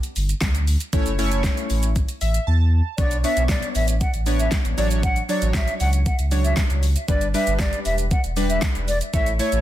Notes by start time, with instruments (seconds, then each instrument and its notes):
0.03 closed hi-hat, shaker
0.16 sub bass G1, open hi-hat, shaker
0.29 closed hi-hat, shaker
0.41 sub bass D2, kick, snare, clap, closed hi-hat, shaker
0.55 closed hi-hat, shaker
0.67 open hi-hat, shaker
0.80 closed hi-hat, shaker
0.93 sub bass A1, synth keys A3 C#4 E4 C#5, kick, closed hi-hat, shaker
1.06 sub bass F#1, closed hi-hat, shaker
1.19 synth keys A3 C#4 E4 C#5, open hi-hat, shaker
1.32 closed hi-hat, shaker
1.44 kick, snare, clap, closed hi-hat, shaker
1.57 closed hi-hat, shaker
1.70 sub bass A1, open hi-hat, shaker
1.83 closed hi-hat, shaker
1.96 kick, closed hi-hat, shaker
2.09 closed hi-hat, shaker
2.21 sub bass A1, synth keys E5, open hi-hat, shaker
2.34 closed hi-hat, shaker
2.47 sub bass E2, synth keys A5
2.98 sub bass B1, synth keys B3 D4 C#5, flute D5, kick, closed hi-hat, shaker
3.11 closed hi-hat, shaker
3.24 synth keys B3 D4 C#5, flute E5, open hi-hat, shaker
3.37 sub bass B1, closed hi-hat, shaker
3.49 flute D5, kick, snare, clap, closed hi-hat, shaker
3.63 closed hi-hat, shaker
3.75 sub bass A1, flute E5, open hi-hat, shaker
3.88 closed hi-hat, shaker
4.01 flute F#5, kick, closed hi-hat, shaker
4.14 sub bass A1, closed hi-hat, shaker
4.26 synth keys B3 D4 C#5, open hi-hat, shaker
4.39 flute E5, closed hi-hat, shaker
4.51 kick, snare, clap, closed hi-hat, shaker
4.65 sub bass A1, closed hi-hat, shaker
4.77 sub bass A1, synth keys F#3 D4 C#5, flute D5, open hi-hat, shaker
4.91 closed hi-hat, shaker
5.03 flute F#5, kick, closed hi-hat, shaker
5.16 closed hi-hat, shaker
5.29 synth keys F#3 D4 C#5, flute D5, open hi-hat, shaker
5.42 sub bass A1, closed hi-hat, shaker
5.54 flute E5, kick, snare, clap, closed hi-hat, shaker
5.68 closed hi-hat, shaker
5.80 sub bass C#2, flute F#5, open hi-hat, shaker
5.93 closed hi-hat, shaker
6.06 flute F#5, kick, closed hi-hat, shaker
6.19 sub bass C#2, closed hi-hat, shaker
6.31 synth keys F#3 D4 C#5, open hi-hat, shaker
6.44 flute E5, closed hi-hat, shaker
6.57 kick, snare, clap, closed hi-hat, shaker
6.70 sub bass C#2, closed hi-hat, shaker
6.83 open hi-hat, shaker
6.96 closed hi-hat, shaker
7.08 sub bass G1, synth keys G3 D4 B4, flute D5, kick, closed hi-hat, shaker
7.21 closed hi-hat, shaker
7.34 synth keys G3 D4 B4, flute E5, open hi-hat, shaker
7.47 sub bass G1, closed hi-hat, shaker
7.59 flute D5, kick, snare, clap, closed hi-hat, shaker
7.73 closed hi-hat, shaker
7.85 sub bass E1, flute E5, open hi-hat, shaker
7.98 closed hi-hat, shaker
8.11 flute F#5, kick, closed hi-hat, shaker
8.24 sub bass E1, closed hi-hat, shaker
8.36 synth keys G3 D4 B4, open hi-hat, shaker
8.50 flute E5, closed hi-hat, shaker
8.62 kick, snare, clap, closed hi-hat, shaker
8.75 sub bass E1, closed hi-hat, shaker
8.88 flute D5, open hi-hat, shaker
9.01 closed hi-hat, shaker
9.13 sub bass A1, synth keys A3 E4 C#5, flute E5, kick, closed hi-hat, shaker
9.26 closed hi-hat, shaker
9.39 synth keys A3 E4 C#5, flute C#5, open hi-hat, shaker
9.52 sub bass A1, closed hi-hat, shaker